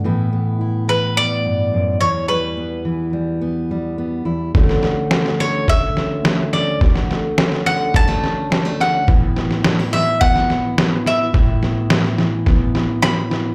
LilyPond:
<<
  \new Staff \with { instrumentName = "Mandolin" } { \time 4/4 \key d \major \tempo 4 = 106 r4. b'8 d''4. cis''8 | b'4. r2 r8 | r4. cis''8 e''4. d''8 | r4. fis''8 a''4. fis''8 |
r4. e''8 fis''4. e''8~ | e''2. b''4 | }
  \new Staff \with { instrumentName = "Steel-string acoustic guitar" } { \time 4/4 \key d \major << { <e b e'>8 b8 e'4 b4. e'8 | g8 b4 g8 b8 g8 b8 e'8 | <d a cis' fis'>8 a8 cis'4 a8 cis'8 a8 cis'8 | fis'8 a8 cis'4 g16 a16 cis'8 g16 a16 cis'8 |
<e b e'>8 b8 d'16 e'8. b8 e'8 b8 e'8 | e'8 b8 e'4 b8 e'8 b8 e'8 | } \\ { a,4. e4 g,8 fis,8 e,8~ | e,4 e2~ e8 e,8 | d,4. d2~ d8 | d,4. d2~ d8 |
a,4. e2~ e8 | a,4. e2~ e8 | } >> }
  \new DrumStaff \with { instrumentName = "Drums" } \drummode { \time 4/4 r4 r4 r4 r4 | r4 r4 r4 r4 | <bd sn>16 sn16 sn8 sn16 sn16 sn8 <bd sn>8 sn8 sn8 sn8 | <bd sn>16 sn16 sn8 sn16 sn16 sn8 <bd sn>16 sn16 sn8 sn8 sn8 |
<bd sn>8 sn16 sn16 sn16 sn16 sn8 <bd sn>16 sn16 sn8 sn8 sn8 | <bd sn>8 sn8 sn16 sn16 sn8 <bd sn>8 sn8 sn8 sn8 | }
>>